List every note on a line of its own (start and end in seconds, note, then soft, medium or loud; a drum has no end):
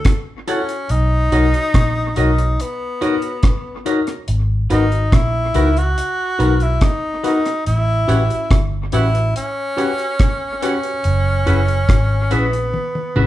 0.00 0.21 A4 loud
0.05 kick loud
0.05 cross-stick loud
0.05 closed hi-hat medium
0.48 0.93 C#4 medium
0.48 0.61 E4 medium
0.48 0.61 F#4 medium
0.48 0.61 A4 medium
0.48 0.61 C#5 medium
0.48 0.61 C#5 loud
0.48 0.61 F#5 loud
0.48 closed hi-hat medium
0.69 closed hi-hat medium
0.89 1.29 B1 loud
0.89 2.17 D#4 loud
0.89 closed hi-hat medium
1.32 1.52 B1 loud
1.32 1.45 D#4 medium
1.32 1.45 F#4 medium
1.32 1.46 A#4 medium
1.32 1.45 A#4 medium
1.32 1.46 C#5 loud
1.32 1.46 D#5 medium
1.32 closed hi-hat medium
1.54 closed hi-hat medium
1.74 2.14 A#1 medium
1.74 kick loud
1.74 cross-stick loud
1.74 closed hi-hat medium
2.16 2.56 B1 medium
2.16 2.30 D#4 medium
2.16 2.63 D#4 medium
2.16 2.30 F#4 medium
2.16 2.30 A#4 medium
2.16 2.30 C#5 loud
2.16 2.30 D#5 medium
2.16 closed hi-hat medium
2.38 muted clean electric guitar stroke medium
2.38 closed hi-hat medium
2.60 3.87 B3 medium
2.60 closed hi-hat loud
3.01 3.15 D#4 medium
3.01 3.14 F#4 medium
3.01 3.15 F#4 medium
3.01 3.15 A#4 medium
3.01 3.14 A#4 medium
3.01 3.15 C#5 loud
3.01 3.15 D#5 medium
3.01 closed hi-hat medium
3.22 closed hi-hat medium
3.43 kick loud
3.43 cross-stick loud
3.43 closed hi-hat medium
3.86 3.99 D#4 medium
3.86 3.99 F#4 medium
3.86 3.99 A#4 medium
3.86 3.99 C#5 loud
3.86 3.99 D#5 medium
3.86 closed hi-hat medium
4.07 4.16 A#4 soft
4.07 4.16 C#5 soft
4.07 cross-stick medium
4.07 closed hi-hat medium
4.28 4.67 G#1 loud
4.28 closed hi-hat medium
4.70 5.10 G#1 medium
4.70 4.83 B3 medium
4.70 4.83 D#4 medium
4.70 5.16 D#4 loud
4.70 4.84 F#4 medium
4.70 4.83 F#4 medium
4.70 4.84 A#4 medium
4.70 4.84 B4 loud
4.70 closed hi-hat medium
4.92 closed hi-hat medium
5.12 5.52 A#1 loud
5.12 5.79 E4 loud
5.12 kick loud
5.12 cross-stick loud
5.12 closed hi-hat medium
5.54 5.94 C#2 loud
5.54 5.68 B3 medium
5.54 5.68 D#4 loud
5.54 5.68 F#4 medium
5.54 5.68 F#4 loud
5.54 5.68 A#4 medium
5.54 5.68 A#4 loud
5.54 5.68 B4 loud
5.54 closed hi-hat medium
5.77 6.64 F#4 loud
5.77 closed hi-hat medium
5.98 closed hi-hat loud
6.39 6.79 B1 loud
6.39 6.52 B3 medium
6.39 6.52 D#4 loud
6.39 6.52 F#4 medium
6.39 6.53 F#4 medium
6.39 6.52 A#4 medium
6.39 6.53 A#4 loud
6.39 6.52 B4 loud
6.39 closed hi-hat medium
6.60 6.84 E4 loud
6.60 muted clean electric guitar stroke medium
6.60 closed hi-hat soft
6.81 7.24 D#4 loud
6.81 kick loud
6.81 cross-stick loud
6.81 closed hi-hat medium
7.23 7.37 B3 medium
7.23 7.37 D#4 loud
7.23 7.64 D#4 loud
7.23 7.37 F#4 medium
7.23 7.37 A#4 medium
7.23 7.37 B4 loud
7.23 closed hi-hat medium
7.46 cross-stick medium
7.46 closed hi-hat medium
7.66 8.06 A1 loud
7.66 8.62 E4 loud
7.66 closed hi-hat medium
8.08 8.28 A1 medium
8.08 8.21 C#4 medium
8.08 8.21 F#4 medium
8.08 8.21 G4 medium
8.08 8.22 B4 loud
8.08 8.22 C#5 medium
8.08 8.22 F#5 loud
8.08 closed hi-hat medium
8.30 closed hi-hat medium
8.51 8.90 G1 loud
8.51 kick loud
8.51 cross-stick loud
8.51 closed hi-hat medium
8.92 9.32 A1 medium
8.92 9.06 C#4 loud
8.92 9.32 E4 loud
8.92 9.06 F#4 medium
8.92 9.06 G4 medium
8.92 9.06 B4 loud
8.92 9.06 C#5 medium
8.92 9.06 F#5 loud
8.92 closed hi-hat medium
9.14 9.23 G4 soft
9.14 9.23 B4 soft
9.14 muted clean electric guitar stroke soft
9.14 closed hi-hat medium
9.36 10.58 C#4 loud
9.36 closed hi-hat loud
9.77 9.90 C#4 medium
9.77 9.90 F#4 medium
9.77 9.90 G4 medium
9.77 9.91 B4 loud
9.77 9.91 C#5 medium
9.77 9.91 F#5 medium
9.77 closed hi-hat medium
9.98 closed hi-hat medium
10.19 kick loud
10.19 cross-stick loud
10.19 closed hi-hat loud
10.62 10.75 C#4 medium
10.62 12.35 C#4 loud
10.62 10.75 F#4 medium
10.62 10.75 G4 medium
10.62 10.75 B4 loud
10.62 10.75 C#5 medium
10.62 10.75 F#5 medium
10.62 closed hi-hat medium
10.83 10.92 G4 soft
10.83 10.92 B4 soft
10.83 closed hi-hat medium
11.04 11.44 F#1 loud
11.04 closed hi-hat medium
11.46 11.86 F#1 medium
11.46 11.59 C#4 medium
11.46 11.59 E4 medium
11.46 11.59 F#4 medium
11.46 11.60 G#4 medium
11.46 11.60 B4 loud
11.46 11.60 B4 medium
11.46 11.60 E5 medium
11.46 closed hi-hat medium
11.68 closed hi-hat medium
11.89 12.28 G#1 medium
11.89 kick loud
11.89 cross-stick loud
11.89 closed hi-hat medium
12.31 12.71 A#1 medium
12.31 13.27 B3 medium
12.31 12.44 C#4 medium
12.31 12.44 E4 medium
12.31 12.44 F#4 medium
12.31 12.44 G#4 medium
12.31 12.44 B4 medium
12.31 12.44 B4 loud
12.31 12.44 E5 loud
12.31 closed hi-hat medium
12.53 closed hi-hat medium
12.74 high tom medium
12.95 high tom medium
13.16 13.27 G#1 medium
13.16 13.27 C#4 medium
13.16 13.27 E4 medium
13.16 13.27 F#4 medium
13.16 13.27 G#4 medium
13.16 13.27 B4 medium
13.16 13.27 B4 loud
13.16 13.27 E5 medium
13.16 mid tom medium